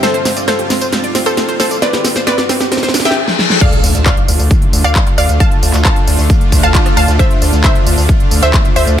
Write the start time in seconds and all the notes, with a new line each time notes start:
Already playing: G2 D3 C4, riser
0.03 C4 F4 A4 C5, snare, closed hi-hat, tambourine
0.14 C5, closed hi-hat
0.25 C4, snare, open hi-hat, tambourine
0.37 D5, closed hi-hat, tambourine
0.48 C4 A4 C5, snare, closed hi-hat, tambourine
0.59 G4, closed hi-hat
0.70 C4, snare, open hi-hat, tambourine
0.81 C5, closed hi-hat, tambourine
0.93 C4, snare, closed hi-hat, tambourine
1.04 D5, closed hi-hat
1.15 C4, snare, open hi-hat, tambourine
1.26 G4 A4 C5, closed hi-hat, tambourine
1.37 C4, snare, closed hi-hat, tambourine
1.48 C5, closed hi-hat
1.60 C4 A4 C5, snare, open hi-hat, tambourine
1.71 D5, closed hi-hat, tambourine
1.82 C4 B4 D5, snare, closed hi-hat, tambourine
1.93 G4, snare, closed hi-hat
2.04 C4, snare, open hi-hat, tambourine
2.16 C5, snare, closed hi-hat, tambourine
2.27 C4 B4 D5, snare, closed hi-hat, tambourine
2.38 D5, snare, closed hi-hat
2.49 C4, snare, open hi-hat, tambourine
2.60 G4, snare, closed hi-hat, tambourine
2.72 C4, snare, closed hi-hat, tambourine, reverse cymbal
2.77 snare
2.83 C5, snare, closed hi-hat
2.88 snare
2.94 D4, snare, open hi-hat, tambourine
3.00 snare
3.05 G4 E5 G5, snare, closed hi-hat, tambourine
3.11 snare
3.28 snare
3.39 snare
3.50 snare
3.61 D3 A3 D4 F4 D5 F5, kick, closed hi-hat, tambourine, crash, impact
3.72 closed hi-hat
3.84 D2, open hi-hat, tambourine
3.95 D2, closed hi-hat, tambourine
4.06 D5 F5, kick, cross-stick, clap, closed hi-hat, tambourine
4.17 closed hi-hat
4.28 D2, open hi-hat, tambourine
4.40 D2, open hi-hat, tambourine
4.51 kick, closed hi-hat, tambourine
4.62 closed hi-hat
4.73 D2, open hi-hat, tambourine
4.84 D2 D5 F5, closed hi-hat, tambourine
4.95 kick, clap, closed hi-hat, tambourine
5.07 closed hi-hat
5.18 D2 D5 F5, open hi-hat, tambourine
5.29 D2, closed hi-hat, tambourine
5.40 F5 A5, kick, closed hi-hat, tambourine
5.51 closed hi-hat
5.63 D2, open hi-hat, tambourine
5.74 D2, clap, closed hi-hat, tambourine
5.85 F5 A5, kick, cross-stick, clap, closed hi-hat
5.96 closed hi-hat
6.07 D2, open hi-hat, tambourine
6.19 D2, open hi-hat, tambourine
6.30 kick, closed hi-hat, tambourine
6.41 closed hi-hat
6.52 D2, kick, open hi-hat, tambourine
6.63 D2 F5 A5, closed hi-hat, tambourine
6.75 kick, clap, closed hi-hat, tambourine
6.86 cross-stick, closed hi-hat
6.97 D2 F5 A5, open hi-hat, tambourine
7.08 D2, closed hi-hat, tambourine
7.19 C5 E5, kick, closed hi-hat, tambourine
7.31 closed hi-hat
7.42 D2, open hi-hat, tambourine
7.53 D2, closed hi-hat, tambourine
7.64 C5 E5, kick, cross-stick, clap, closed hi-hat, tambourine
7.75 closed hi-hat
7.87 D2, open hi-hat, tambourine
7.98 D2, open hi-hat, tambourine
8.09 kick, tambourine
8.20 closed hi-hat
8.31 D2, open hi-hat, tambourine
8.43 D2 C5 E5, closed hi-hat, tambourine
8.54 kick, clap, closed hi-hat, tambourine
8.65 closed hi-hat
8.76 D2 C5 E5, open hi-hat, tambourine
8.87 D2, closed hi-hat, tambourine